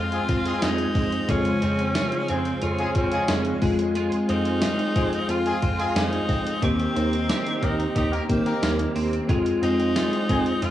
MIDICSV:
0, 0, Header, 1, 8, 480
1, 0, Start_track
1, 0, Key_signature, -4, "minor"
1, 0, Tempo, 666667
1, 927, Time_signature, 4, 2, 24, 8
1, 7708, End_track
2, 0, Start_track
2, 0, Title_t, "Analog synth pad"
2, 0, Program_c, 0, 89
2, 0, Note_on_c, 0, 68, 83
2, 0, Note_on_c, 0, 72, 73
2, 0, Note_on_c, 0, 77, 75
2, 0, Note_on_c, 0, 84, 89
2, 908, Note_off_c, 0, 72, 0
2, 910, Note_off_c, 0, 77, 0
2, 910, Note_off_c, 0, 84, 0
2, 930, Note_on_c, 0, 72, 74
2, 932, Note_on_c, 0, 84, 92
2, 933, Note_on_c, 0, 77, 76
2, 2592, Note_off_c, 0, 72, 0
2, 2593, Note_off_c, 0, 77, 0
2, 2616, Note_on_c, 0, 72, 77
2, 2616, Note_on_c, 0, 77, 82
2, 4740, Note_off_c, 0, 68, 0
2, 4741, Note_off_c, 0, 84, 0
2, 4750, Note_off_c, 0, 77, 0
2, 4767, Note_on_c, 0, 75, 75
2, 4769, Note_on_c, 0, 67, 79
2, 4769, Note_on_c, 0, 82, 90
2, 6663, Note_off_c, 0, 72, 0
2, 6668, Note_off_c, 0, 75, 0
2, 6669, Note_off_c, 0, 67, 0
2, 6669, Note_off_c, 0, 82, 0
2, 6692, Note_on_c, 0, 68, 81
2, 6693, Note_on_c, 0, 77, 74
2, 6693, Note_on_c, 0, 84, 88
2, 6694, Note_on_c, 0, 72, 78
2, 7708, Note_off_c, 0, 68, 0
2, 7708, Note_off_c, 0, 72, 0
2, 7708, Note_off_c, 0, 77, 0
2, 7708, Note_off_c, 0, 84, 0
2, 7708, End_track
3, 0, Start_track
3, 0, Title_t, "Horn section"
3, 0, Program_c, 1, 61
3, 89, Note_on_c, 1, 56, 93
3, 89, Note_on_c, 1, 60, 92
3, 89, Note_on_c, 1, 68, 101
3, 90, Note_on_c, 1, 65, 100
3, 165, Note_off_c, 1, 56, 0
3, 165, Note_off_c, 1, 60, 0
3, 165, Note_off_c, 1, 65, 0
3, 165, Note_off_c, 1, 68, 0
3, 328, Note_on_c, 1, 65, 93
3, 329, Note_on_c, 1, 56, 97
3, 329, Note_on_c, 1, 60, 93
3, 329, Note_on_c, 1, 68, 106
3, 481, Note_off_c, 1, 56, 0
3, 481, Note_off_c, 1, 65, 0
3, 481, Note_off_c, 1, 68, 0
3, 482, Note_off_c, 1, 60, 0
3, 1649, Note_on_c, 1, 56, 84
3, 1649, Note_on_c, 1, 61, 83
3, 1649, Note_on_c, 1, 65, 87
3, 1649, Note_on_c, 1, 68, 91
3, 1750, Note_off_c, 1, 56, 0
3, 1750, Note_off_c, 1, 61, 0
3, 1750, Note_off_c, 1, 65, 0
3, 1750, Note_off_c, 1, 68, 0
3, 2008, Note_on_c, 1, 56, 99
3, 2008, Note_on_c, 1, 61, 95
3, 2008, Note_on_c, 1, 68, 108
3, 2009, Note_on_c, 1, 65, 95
3, 2084, Note_off_c, 1, 61, 0
3, 2085, Note_off_c, 1, 56, 0
3, 2085, Note_off_c, 1, 65, 0
3, 2085, Note_off_c, 1, 68, 0
3, 2248, Note_on_c, 1, 49, 97
3, 2248, Note_on_c, 1, 56, 97
3, 2248, Note_on_c, 1, 65, 97
3, 2248, Note_on_c, 1, 68, 106
3, 2401, Note_off_c, 1, 49, 0
3, 2401, Note_off_c, 1, 56, 0
3, 2401, Note_off_c, 1, 65, 0
3, 2401, Note_off_c, 1, 68, 0
3, 3566, Note_on_c, 1, 65, 90
3, 3567, Note_on_c, 1, 56, 84
3, 3567, Note_on_c, 1, 60, 89
3, 3567, Note_on_c, 1, 68, 91
3, 3669, Note_off_c, 1, 56, 0
3, 3669, Note_off_c, 1, 60, 0
3, 3669, Note_off_c, 1, 65, 0
3, 3669, Note_off_c, 1, 68, 0
3, 3927, Note_on_c, 1, 56, 105
3, 3927, Note_on_c, 1, 60, 98
3, 3927, Note_on_c, 1, 65, 92
3, 3927, Note_on_c, 1, 68, 115
3, 4004, Note_off_c, 1, 56, 0
3, 4004, Note_off_c, 1, 60, 0
3, 4004, Note_off_c, 1, 65, 0
3, 4004, Note_off_c, 1, 68, 0
3, 4166, Note_on_c, 1, 56, 105
3, 4166, Note_on_c, 1, 60, 94
3, 4166, Note_on_c, 1, 65, 101
3, 4166, Note_on_c, 1, 68, 114
3, 4320, Note_off_c, 1, 56, 0
3, 4320, Note_off_c, 1, 60, 0
3, 4320, Note_off_c, 1, 65, 0
3, 4320, Note_off_c, 1, 68, 0
3, 5487, Note_on_c, 1, 58, 84
3, 5487, Note_on_c, 1, 63, 85
3, 5487, Note_on_c, 1, 67, 80
3, 5487, Note_on_c, 1, 70, 91
3, 5589, Note_off_c, 1, 58, 0
3, 5589, Note_off_c, 1, 63, 0
3, 5589, Note_off_c, 1, 70, 0
3, 5590, Note_off_c, 1, 67, 0
3, 5846, Note_on_c, 1, 58, 97
3, 5846, Note_on_c, 1, 63, 92
3, 5846, Note_on_c, 1, 67, 96
3, 5846, Note_on_c, 1, 70, 105
3, 5923, Note_off_c, 1, 58, 0
3, 5923, Note_off_c, 1, 63, 0
3, 5923, Note_off_c, 1, 67, 0
3, 5923, Note_off_c, 1, 70, 0
3, 6088, Note_on_c, 1, 58, 97
3, 6088, Note_on_c, 1, 63, 95
3, 6088, Note_on_c, 1, 67, 99
3, 6088, Note_on_c, 1, 70, 105
3, 6241, Note_off_c, 1, 58, 0
3, 6241, Note_off_c, 1, 63, 0
3, 6241, Note_off_c, 1, 67, 0
3, 6241, Note_off_c, 1, 70, 0
3, 7409, Note_on_c, 1, 56, 88
3, 7409, Note_on_c, 1, 68, 96
3, 7410, Note_on_c, 1, 60, 90
3, 7410, Note_on_c, 1, 65, 85
3, 7511, Note_off_c, 1, 56, 0
3, 7511, Note_off_c, 1, 60, 0
3, 7511, Note_off_c, 1, 65, 0
3, 7511, Note_off_c, 1, 68, 0
3, 7708, End_track
4, 0, Start_track
4, 0, Title_t, "Tenor saxophone"
4, 0, Program_c, 2, 66
4, 0, Note_on_c, 2, 65, 112
4, 454, Note_on_c, 2, 63, 98
4, 465, Note_off_c, 2, 65, 0
4, 936, Note_on_c, 2, 61, 106
4, 947, Note_off_c, 2, 63, 0
4, 1658, Note_on_c, 2, 60, 86
4, 1668, Note_off_c, 2, 61, 0
4, 1894, Note_on_c, 2, 61, 86
4, 1905, Note_off_c, 2, 60, 0
4, 2131, Note_off_c, 2, 61, 0
4, 2140, Note_on_c, 2, 61, 85
4, 2585, Note_off_c, 2, 61, 0
4, 3095, Note_on_c, 2, 63, 119
4, 3816, Note_on_c, 2, 65, 106
4, 3827, Note_off_c, 2, 63, 0
4, 4292, Note_off_c, 2, 65, 0
4, 4299, Note_on_c, 2, 63, 105
4, 4745, Note_off_c, 2, 63, 0
4, 4780, Note_on_c, 2, 60, 110
4, 5503, Note_on_c, 2, 63, 92
4, 5514, Note_off_c, 2, 60, 0
4, 5735, Note_off_c, 2, 63, 0
4, 5744, Note_on_c, 2, 63, 98
4, 5848, Note_off_c, 2, 63, 0
4, 5984, Note_on_c, 2, 58, 81
4, 6427, Note_off_c, 2, 58, 0
4, 6939, Note_on_c, 2, 63, 116
4, 7660, Note_on_c, 2, 65, 107
4, 7671, Note_off_c, 2, 63, 0
4, 7708, Note_off_c, 2, 65, 0
4, 7708, End_track
5, 0, Start_track
5, 0, Title_t, "Clean electric guitar"
5, 0, Program_c, 3, 27
5, 0, Note_on_c, 3, 56, 86
5, 0, Note_on_c, 3, 60, 61
5, 0, Note_on_c, 3, 65, 72
5, 204, Note_off_c, 3, 60, 0
5, 207, Note_on_c, 3, 60, 60
5, 446, Note_off_c, 3, 56, 0
5, 449, Note_on_c, 3, 56, 65
5, 687, Note_off_c, 3, 60, 0
5, 689, Note_on_c, 3, 60, 59
5, 926, Note_off_c, 3, 56, 0
5, 929, Note_on_c, 3, 56, 82
5, 931, Note_off_c, 3, 65, 0
5, 934, Note_on_c, 3, 65, 73
5, 1165, Note_off_c, 3, 60, 0
5, 1168, Note_on_c, 3, 60, 67
5, 1407, Note_off_c, 3, 65, 0
5, 1410, Note_on_c, 3, 65, 72
5, 1647, Note_off_c, 3, 60, 0
5, 1650, Note_on_c, 3, 60, 62
5, 1883, Note_off_c, 3, 65, 0
5, 1886, Note_on_c, 3, 65, 67
5, 2122, Note_off_c, 3, 60, 0
5, 2125, Note_on_c, 3, 60, 64
5, 2364, Note_off_c, 3, 56, 0
5, 2367, Note_on_c, 3, 56, 67
5, 2604, Note_off_c, 3, 56, 0
5, 2607, Note_on_c, 3, 56, 78
5, 2839, Note_off_c, 3, 56, 0
5, 2848, Note_on_c, 3, 56, 89
5, 2849, Note_off_c, 3, 65, 0
5, 2851, Note_on_c, 3, 65, 72
5, 3086, Note_off_c, 3, 60, 0
5, 3089, Note_on_c, 3, 60, 66
5, 3319, Note_off_c, 3, 65, 0
5, 3328, Note_on_c, 3, 65, 72
5, 3565, Note_off_c, 3, 60, 0
5, 3568, Note_on_c, 3, 60, 62
5, 3798, Note_off_c, 3, 65, 0
5, 3807, Note_on_c, 3, 65, 72
5, 4048, Note_off_c, 3, 60, 0
5, 4051, Note_on_c, 3, 60, 62
5, 4277, Note_off_c, 3, 56, 0
5, 4286, Note_on_c, 3, 56, 64
5, 4524, Note_off_c, 3, 60, 0
5, 4527, Note_on_c, 3, 60, 64
5, 4767, Note_off_c, 3, 65, 0
5, 4769, Note_on_c, 3, 51, 91
5, 4773, Note_on_c, 3, 67, 76
5, 4815, Note_off_c, 3, 56, 0
5, 5006, Note_off_c, 3, 60, 0
5, 5009, Note_on_c, 3, 60, 66
5, 5240, Note_off_c, 3, 67, 0
5, 5249, Note_on_c, 3, 67, 69
5, 5484, Note_off_c, 3, 60, 0
5, 5487, Note_on_c, 3, 60, 65
5, 5718, Note_off_c, 3, 67, 0
5, 5726, Note_on_c, 3, 67, 67
5, 5965, Note_off_c, 3, 60, 0
5, 5968, Note_on_c, 3, 60, 66
5, 6207, Note_on_c, 3, 58, 62
5, 6443, Note_off_c, 3, 60, 0
5, 6446, Note_on_c, 3, 60, 60
5, 6684, Note_off_c, 3, 58, 0
5, 6687, Note_off_c, 3, 67, 0
5, 6687, Note_on_c, 3, 56, 88
5, 6688, Note_off_c, 3, 51, 0
5, 6693, Note_on_c, 3, 65, 73
5, 6926, Note_off_c, 3, 60, 0
5, 6929, Note_on_c, 3, 60, 66
5, 7165, Note_off_c, 3, 65, 0
5, 7168, Note_on_c, 3, 65, 72
5, 7405, Note_off_c, 3, 60, 0
5, 7408, Note_on_c, 3, 60, 64
5, 7645, Note_off_c, 3, 65, 0
5, 7648, Note_on_c, 3, 65, 69
5, 7708, Note_off_c, 3, 56, 0
5, 7708, Note_off_c, 3, 60, 0
5, 7708, Note_off_c, 3, 65, 0
5, 7708, End_track
6, 0, Start_track
6, 0, Title_t, "Tine electric piano"
6, 0, Program_c, 4, 4
6, 0, Control_c, 4, 64, 127
6, 0, Note_on_c, 4, 56, 80
6, 0, Note_on_c, 4, 60, 72
6, 0, Note_on_c, 4, 65, 90
6, 895, Note_off_c, 4, 56, 0
6, 899, Note_off_c, 4, 60, 0
6, 903, Note_off_c, 4, 65, 0
6, 925, Note_on_c, 4, 49, 70
6, 929, Note_on_c, 4, 53, 67
6, 934, Note_on_c, 4, 56, 66
6, 937, Control_c, 4, 64, 0
6, 939, Note_on_c, 4, 72, 61
6, 944, Note_on_c, 4, 65, 77
6, 1044, Control_c, 4, 64, 127
6, 2578, Note_off_c, 4, 49, 0
6, 2580, Note_off_c, 4, 53, 0
6, 2582, Note_off_c, 4, 56, 0
6, 2585, Note_off_c, 4, 72, 0
6, 2587, Note_off_c, 4, 65, 0
6, 2603, Note_on_c, 4, 56, 70
6, 2611, Note_on_c, 4, 60, 66
6, 2618, Control_c, 4, 64, 0
6, 2621, Note_on_c, 4, 65, 76
6, 2746, Control_c, 4, 64, 127
6, 4496, Note_off_c, 4, 56, 0
6, 4500, Note_off_c, 4, 60, 0
6, 4505, Note_off_c, 4, 65, 0
6, 4763, Note_on_c, 4, 51, 72
6, 4767, Note_on_c, 4, 55, 62
6, 4771, Note_on_c, 4, 58, 63
6, 4774, Note_on_c, 4, 60, 64
6, 4778, Control_c, 4, 64, 0
6, 4780, Note_on_c, 4, 67, 77
6, 4916, Control_c, 4, 64, 127
6, 5941, Note_off_c, 4, 51, 0
6, 5943, Note_off_c, 4, 55, 0
6, 5945, Note_off_c, 4, 58, 0
6, 5947, Note_off_c, 4, 60, 0
6, 5950, Note_off_c, 4, 67, 0
6, 5966, Note_on_c, 4, 51, 52
6, 5970, Note_on_c, 4, 55, 44
6, 5971, Note_on_c, 4, 58, 45
6, 5973, Note_on_c, 4, 60, 46
6, 5975, Note_on_c, 4, 67, 57
6, 6682, Note_on_c, 4, 56, 81
6, 6683, Note_off_c, 4, 60, 0
6, 6687, Note_off_c, 4, 51, 0
6, 6689, Note_off_c, 4, 55, 0
6, 6689, Note_off_c, 4, 58, 0
6, 6691, Note_off_c, 4, 67, 0
6, 6692, Note_on_c, 4, 60, 75
6, 6697, Control_c, 4, 64, 0
6, 6700, Note_on_c, 4, 65, 91
6, 6835, Control_c, 4, 64, 127
6, 7708, Note_off_c, 4, 56, 0
6, 7708, Note_off_c, 4, 60, 0
6, 7708, Note_off_c, 4, 65, 0
6, 7708, End_track
7, 0, Start_track
7, 0, Title_t, "Analog synth bass"
7, 0, Program_c, 5, 38
7, 0, Note_on_c, 5, 41, 111
7, 142, Note_off_c, 5, 41, 0
7, 209, Note_on_c, 5, 41, 106
7, 381, Note_off_c, 5, 41, 0
7, 450, Note_on_c, 5, 41, 102
7, 622, Note_off_c, 5, 41, 0
7, 687, Note_on_c, 5, 41, 102
7, 860, Note_off_c, 5, 41, 0
7, 927, Note_on_c, 5, 41, 105
7, 1100, Note_off_c, 5, 41, 0
7, 1172, Note_on_c, 5, 41, 96
7, 1429, Note_off_c, 5, 41, 0
7, 1651, Note_on_c, 5, 41, 93
7, 1823, Note_off_c, 5, 41, 0
7, 1890, Note_on_c, 5, 41, 98
7, 2062, Note_off_c, 5, 41, 0
7, 2128, Note_on_c, 5, 41, 103
7, 2301, Note_off_c, 5, 41, 0
7, 2370, Note_on_c, 5, 41, 97
7, 2542, Note_off_c, 5, 41, 0
7, 2605, Note_on_c, 5, 41, 94
7, 2952, Note_off_c, 5, 41, 0
7, 3089, Note_on_c, 5, 41, 98
7, 3348, Note_off_c, 5, 41, 0
7, 3571, Note_on_c, 5, 41, 99
7, 3742, Note_off_c, 5, 41, 0
7, 3807, Note_on_c, 5, 41, 111
7, 3980, Note_off_c, 5, 41, 0
7, 4050, Note_on_c, 5, 41, 101
7, 4222, Note_off_c, 5, 41, 0
7, 4289, Note_on_c, 5, 41, 103
7, 4461, Note_off_c, 5, 41, 0
7, 4529, Note_on_c, 5, 41, 96
7, 4701, Note_off_c, 5, 41, 0
7, 4770, Note_on_c, 5, 39, 113
7, 4942, Note_off_c, 5, 39, 0
7, 5011, Note_on_c, 5, 39, 102
7, 5269, Note_off_c, 5, 39, 0
7, 5493, Note_on_c, 5, 39, 101
7, 5664, Note_off_c, 5, 39, 0
7, 5732, Note_on_c, 5, 39, 110
7, 5903, Note_off_c, 5, 39, 0
7, 5974, Note_on_c, 5, 39, 101
7, 6144, Note_off_c, 5, 39, 0
7, 6207, Note_on_c, 5, 39, 104
7, 6380, Note_off_c, 5, 39, 0
7, 6450, Note_on_c, 5, 39, 97
7, 6622, Note_off_c, 5, 39, 0
7, 6691, Note_on_c, 5, 41, 111
7, 6862, Note_off_c, 5, 41, 0
7, 6927, Note_on_c, 5, 41, 103
7, 7187, Note_off_c, 5, 41, 0
7, 7413, Note_on_c, 5, 41, 105
7, 7584, Note_off_c, 5, 41, 0
7, 7648, Note_on_c, 5, 41, 114
7, 7708, Note_off_c, 5, 41, 0
7, 7708, End_track
8, 0, Start_track
8, 0, Title_t, "Drums"
8, 87, Note_on_c, 9, 42, 52
8, 159, Note_off_c, 9, 42, 0
8, 207, Note_on_c, 9, 42, 74
8, 209, Note_on_c, 9, 36, 92
8, 279, Note_off_c, 9, 42, 0
8, 281, Note_off_c, 9, 36, 0
8, 328, Note_on_c, 9, 42, 56
8, 400, Note_off_c, 9, 42, 0
8, 447, Note_on_c, 9, 42, 86
8, 448, Note_on_c, 9, 38, 112
8, 448, Note_on_c, 9, 54, 63
8, 519, Note_off_c, 9, 42, 0
8, 520, Note_off_c, 9, 38, 0
8, 520, Note_off_c, 9, 54, 0
8, 564, Note_on_c, 9, 42, 58
8, 636, Note_off_c, 9, 42, 0
8, 685, Note_on_c, 9, 46, 61
8, 686, Note_on_c, 9, 36, 95
8, 757, Note_off_c, 9, 46, 0
8, 758, Note_off_c, 9, 36, 0
8, 810, Note_on_c, 9, 42, 55
8, 882, Note_off_c, 9, 42, 0
8, 927, Note_on_c, 9, 36, 110
8, 927, Note_on_c, 9, 42, 83
8, 999, Note_off_c, 9, 36, 0
8, 999, Note_off_c, 9, 42, 0
8, 1045, Note_on_c, 9, 42, 56
8, 1117, Note_off_c, 9, 42, 0
8, 1167, Note_on_c, 9, 42, 77
8, 1239, Note_off_c, 9, 42, 0
8, 1288, Note_on_c, 9, 42, 54
8, 1360, Note_off_c, 9, 42, 0
8, 1405, Note_on_c, 9, 38, 114
8, 1405, Note_on_c, 9, 42, 81
8, 1406, Note_on_c, 9, 54, 72
8, 1477, Note_off_c, 9, 38, 0
8, 1477, Note_off_c, 9, 42, 0
8, 1478, Note_off_c, 9, 54, 0
8, 1527, Note_on_c, 9, 42, 54
8, 1599, Note_off_c, 9, 42, 0
8, 1645, Note_on_c, 9, 42, 65
8, 1717, Note_off_c, 9, 42, 0
8, 1766, Note_on_c, 9, 42, 55
8, 1838, Note_off_c, 9, 42, 0
8, 1883, Note_on_c, 9, 42, 86
8, 1955, Note_off_c, 9, 42, 0
8, 2005, Note_on_c, 9, 42, 51
8, 2077, Note_off_c, 9, 42, 0
8, 2124, Note_on_c, 9, 42, 80
8, 2128, Note_on_c, 9, 36, 89
8, 2196, Note_off_c, 9, 42, 0
8, 2200, Note_off_c, 9, 36, 0
8, 2243, Note_on_c, 9, 42, 54
8, 2315, Note_off_c, 9, 42, 0
8, 2363, Note_on_c, 9, 42, 85
8, 2364, Note_on_c, 9, 38, 112
8, 2364, Note_on_c, 9, 54, 63
8, 2435, Note_off_c, 9, 42, 0
8, 2436, Note_off_c, 9, 38, 0
8, 2436, Note_off_c, 9, 54, 0
8, 2482, Note_on_c, 9, 42, 58
8, 2554, Note_off_c, 9, 42, 0
8, 2604, Note_on_c, 9, 46, 67
8, 2606, Note_on_c, 9, 36, 110
8, 2676, Note_off_c, 9, 46, 0
8, 2678, Note_off_c, 9, 36, 0
8, 2728, Note_on_c, 9, 42, 54
8, 2800, Note_off_c, 9, 42, 0
8, 2846, Note_on_c, 9, 42, 82
8, 2918, Note_off_c, 9, 42, 0
8, 2967, Note_on_c, 9, 42, 54
8, 3039, Note_off_c, 9, 42, 0
8, 3088, Note_on_c, 9, 42, 78
8, 3160, Note_off_c, 9, 42, 0
8, 3206, Note_on_c, 9, 42, 52
8, 3278, Note_off_c, 9, 42, 0
8, 3324, Note_on_c, 9, 38, 123
8, 3324, Note_on_c, 9, 42, 83
8, 3324, Note_on_c, 9, 54, 72
8, 3396, Note_off_c, 9, 38, 0
8, 3396, Note_off_c, 9, 42, 0
8, 3396, Note_off_c, 9, 54, 0
8, 3449, Note_on_c, 9, 42, 51
8, 3521, Note_off_c, 9, 42, 0
8, 3569, Note_on_c, 9, 42, 70
8, 3570, Note_on_c, 9, 36, 101
8, 3641, Note_off_c, 9, 42, 0
8, 3642, Note_off_c, 9, 36, 0
8, 3692, Note_on_c, 9, 42, 54
8, 3764, Note_off_c, 9, 42, 0
8, 3808, Note_on_c, 9, 42, 85
8, 3880, Note_off_c, 9, 42, 0
8, 3930, Note_on_c, 9, 42, 49
8, 4002, Note_off_c, 9, 42, 0
8, 4049, Note_on_c, 9, 42, 73
8, 4051, Note_on_c, 9, 36, 95
8, 4121, Note_off_c, 9, 42, 0
8, 4123, Note_off_c, 9, 36, 0
8, 4173, Note_on_c, 9, 42, 56
8, 4245, Note_off_c, 9, 42, 0
8, 4291, Note_on_c, 9, 42, 86
8, 4292, Note_on_c, 9, 54, 65
8, 4293, Note_on_c, 9, 38, 113
8, 4363, Note_off_c, 9, 42, 0
8, 4364, Note_off_c, 9, 54, 0
8, 4365, Note_off_c, 9, 38, 0
8, 4411, Note_on_c, 9, 42, 58
8, 4483, Note_off_c, 9, 42, 0
8, 4528, Note_on_c, 9, 36, 100
8, 4530, Note_on_c, 9, 46, 60
8, 4600, Note_off_c, 9, 36, 0
8, 4602, Note_off_c, 9, 46, 0
8, 4655, Note_on_c, 9, 42, 60
8, 4727, Note_off_c, 9, 42, 0
8, 4769, Note_on_c, 9, 36, 109
8, 4770, Note_on_c, 9, 42, 86
8, 4841, Note_off_c, 9, 36, 0
8, 4842, Note_off_c, 9, 42, 0
8, 4892, Note_on_c, 9, 42, 52
8, 4964, Note_off_c, 9, 42, 0
8, 5014, Note_on_c, 9, 42, 75
8, 5086, Note_off_c, 9, 42, 0
8, 5134, Note_on_c, 9, 42, 52
8, 5206, Note_off_c, 9, 42, 0
8, 5252, Note_on_c, 9, 42, 82
8, 5253, Note_on_c, 9, 38, 116
8, 5253, Note_on_c, 9, 54, 66
8, 5324, Note_off_c, 9, 42, 0
8, 5325, Note_off_c, 9, 38, 0
8, 5325, Note_off_c, 9, 54, 0
8, 5375, Note_on_c, 9, 42, 53
8, 5447, Note_off_c, 9, 42, 0
8, 5492, Note_on_c, 9, 36, 95
8, 5492, Note_on_c, 9, 42, 65
8, 5564, Note_off_c, 9, 36, 0
8, 5564, Note_off_c, 9, 42, 0
8, 5615, Note_on_c, 9, 42, 56
8, 5687, Note_off_c, 9, 42, 0
8, 5730, Note_on_c, 9, 36, 94
8, 5730, Note_on_c, 9, 42, 87
8, 5802, Note_off_c, 9, 36, 0
8, 5802, Note_off_c, 9, 42, 0
8, 5855, Note_on_c, 9, 42, 53
8, 5927, Note_off_c, 9, 42, 0
8, 5972, Note_on_c, 9, 36, 91
8, 5972, Note_on_c, 9, 42, 75
8, 6044, Note_off_c, 9, 36, 0
8, 6044, Note_off_c, 9, 42, 0
8, 6092, Note_on_c, 9, 42, 56
8, 6164, Note_off_c, 9, 42, 0
8, 6212, Note_on_c, 9, 42, 85
8, 6212, Note_on_c, 9, 54, 61
8, 6213, Note_on_c, 9, 38, 114
8, 6284, Note_off_c, 9, 42, 0
8, 6284, Note_off_c, 9, 54, 0
8, 6285, Note_off_c, 9, 38, 0
8, 6331, Note_on_c, 9, 42, 58
8, 6403, Note_off_c, 9, 42, 0
8, 6449, Note_on_c, 9, 46, 65
8, 6521, Note_off_c, 9, 46, 0
8, 6575, Note_on_c, 9, 42, 56
8, 6647, Note_off_c, 9, 42, 0
8, 6690, Note_on_c, 9, 36, 108
8, 6692, Note_on_c, 9, 42, 83
8, 6762, Note_off_c, 9, 36, 0
8, 6764, Note_off_c, 9, 42, 0
8, 6812, Note_on_c, 9, 42, 53
8, 6884, Note_off_c, 9, 42, 0
8, 6933, Note_on_c, 9, 42, 78
8, 7005, Note_off_c, 9, 42, 0
8, 7054, Note_on_c, 9, 42, 52
8, 7126, Note_off_c, 9, 42, 0
8, 7171, Note_on_c, 9, 42, 83
8, 7172, Note_on_c, 9, 38, 115
8, 7172, Note_on_c, 9, 54, 67
8, 7243, Note_off_c, 9, 42, 0
8, 7244, Note_off_c, 9, 38, 0
8, 7244, Note_off_c, 9, 54, 0
8, 7293, Note_on_c, 9, 42, 54
8, 7365, Note_off_c, 9, 42, 0
8, 7411, Note_on_c, 9, 36, 97
8, 7412, Note_on_c, 9, 42, 70
8, 7483, Note_off_c, 9, 36, 0
8, 7484, Note_off_c, 9, 42, 0
8, 7531, Note_on_c, 9, 42, 57
8, 7603, Note_off_c, 9, 42, 0
8, 7648, Note_on_c, 9, 42, 86
8, 7708, Note_off_c, 9, 42, 0
8, 7708, End_track
0, 0, End_of_file